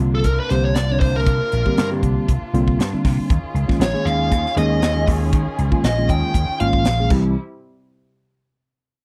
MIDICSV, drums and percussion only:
0, 0, Header, 1, 2, 480
1, 0, Start_track
1, 0, Key_signature, -3, "minor"
1, 0, Tempo, 507614
1, 1202, Time_signature, 4, 2, 24, 8
1, 8553, End_track
2, 0, Start_track
2, 0, Title_t, "Drums"
2, 226, Note_on_c, 9, 42, 83
2, 230, Note_on_c, 9, 36, 67
2, 321, Note_off_c, 9, 42, 0
2, 325, Note_off_c, 9, 36, 0
2, 475, Note_on_c, 9, 42, 57
2, 480, Note_on_c, 9, 38, 33
2, 569, Note_off_c, 9, 42, 0
2, 575, Note_off_c, 9, 38, 0
2, 712, Note_on_c, 9, 42, 80
2, 718, Note_on_c, 9, 38, 96
2, 807, Note_off_c, 9, 42, 0
2, 812, Note_off_c, 9, 38, 0
2, 956, Note_on_c, 9, 36, 89
2, 958, Note_on_c, 9, 46, 80
2, 1050, Note_off_c, 9, 36, 0
2, 1053, Note_off_c, 9, 46, 0
2, 1196, Note_on_c, 9, 36, 102
2, 1196, Note_on_c, 9, 42, 71
2, 1291, Note_off_c, 9, 36, 0
2, 1291, Note_off_c, 9, 42, 0
2, 1437, Note_on_c, 9, 42, 59
2, 1531, Note_off_c, 9, 42, 0
2, 1567, Note_on_c, 9, 36, 71
2, 1662, Note_off_c, 9, 36, 0
2, 1679, Note_on_c, 9, 42, 79
2, 1684, Note_on_c, 9, 38, 105
2, 1773, Note_off_c, 9, 42, 0
2, 1779, Note_off_c, 9, 38, 0
2, 1919, Note_on_c, 9, 36, 69
2, 1921, Note_on_c, 9, 42, 53
2, 2013, Note_off_c, 9, 36, 0
2, 2016, Note_off_c, 9, 42, 0
2, 2160, Note_on_c, 9, 36, 65
2, 2163, Note_on_c, 9, 42, 75
2, 2255, Note_off_c, 9, 36, 0
2, 2258, Note_off_c, 9, 42, 0
2, 2407, Note_on_c, 9, 42, 58
2, 2502, Note_off_c, 9, 42, 0
2, 2531, Note_on_c, 9, 36, 73
2, 2625, Note_off_c, 9, 36, 0
2, 2648, Note_on_c, 9, 42, 83
2, 2654, Note_on_c, 9, 38, 101
2, 2743, Note_off_c, 9, 42, 0
2, 2749, Note_off_c, 9, 38, 0
2, 2882, Note_on_c, 9, 36, 89
2, 2885, Note_on_c, 9, 46, 82
2, 2891, Note_on_c, 9, 38, 36
2, 2977, Note_off_c, 9, 36, 0
2, 2980, Note_off_c, 9, 46, 0
2, 2985, Note_off_c, 9, 38, 0
2, 3122, Note_on_c, 9, 36, 109
2, 3123, Note_on_c, 9, 42, 75
2, 3216, Note_off_c, 9, 36, 0
2, 3218, Note_off_c, 9, 42, 0
2, 3364, Note_on_c, 9, 42, 57
2, 3459, Note_off_c, 9, 42, 0
2, 3491, Note_on_c, 9, 36, 71
2, 3501, Note_on_c, 9, 38, 32
2, 3586, Note_off_c, 9, 36, 0
2, 3595, Note_off_c, 9, 38, 0
2, 3604, Note_on_c, 9, 42, 91
2, 3610, Note_on_c, 9, 38, 109
2, 3699, Note_off_c, 9, 42, 0
2, 3705, Note_off_c, 9, 38, 0
2, 3847, Note_on_c, 9, 42, 62
2, 3942, Note_off_c, 9, 42, 0
2, 4081, Note_on_c, 9, 36, 69
2, 4083, Note_on_c, 9, 42, 86
2, 4175, Note_off_c, 9, 36, 0
2, 4177, Note_off_c, 9, 42, 0
2, 4217, Note_on_c, 9, 38, 33
2, 4312, Note_off_c, 9, 38, 0
2, 4326, Note_on_c, 9, 42, 68
2, 4420, Note_off_c, 9, 42, 0
2, 4561, Note_on_c, 9, 42, 85
2, 4566, Note_on_c, 9, 38, 109
2, 4655, Note_off_c, 9, 42, 0
2, 4661, Note_off_c, 9, 38, 0
2, 4799, Note_on_c, 9, 36, 88
2, 4803, Note_on_c, 9, 46, 82
2, 4893, Note_off_c, 9, 36, 0
2, 4897, Note_off_c, 9, 46, 0
2, 5038, Note_on_c, 9, 36, 105
2, 5042, Note_on_c, 9, 42, 84
2, 5133, Note_off_c, 9, 36, 0
2, 5136, Note_off_c, 9, 42, 0
2, 5282, Note_on_c, 9, 42, 60
2, 5377, Note_off_c, 9, 42, 0
2, 5407, Note_on_c, 9, 36, 76
2, 5502, Note_off_c, 9, 36, 0
2, 5522, Note_on_c, 9, 42, 87
2, 5528, Note_on_c, 9, 38, 105
2, 5617, Note_off_c, 9, 42, 0
2, 5623, Note_off_c, 9, 38, 0
2, 5758, Note_on_c, 9, 36, 70
2, 5762, Note_on_c, 9, 42, 57
2, 5853, Note_off_c, 9, 36, 0
2, 5857, Note_off_c, 9, 42, 0
2, 5997, Note_on_c, 9, 36, 68
2, 6004, Note_on_c, 9, 42, 85
2, 6092, Note_off_c, 9, 36, 0
2, 6098, Note_off_c, 9, 42, 0
2, 6242, Note_on_c, 9, 42, 58
2, 6336, Note_off_c, 9, 42, 0
2, 6365, Note_on_c, 9, 36, 78
2, 6460, Note_off_c, 9, 36, 0
2, 6478, Note_on_c, 9, 42, 77
2, 6484, Note_on_c, 9, 38, 113
2, 6572, Note_off_c, 9, 42, 0
2, 6578, Note_off_c, 9, 38, 0
2, 6717, Note_on_c, 9, 36, 108
2, 6718, Note_on_c, 9, 49, 87
2, 6812, Note_off_c, 9, 36, 0
2, 6813, Note_off_c, 9, 49, 0
2, 8553, End_track
0, 0, End_of_file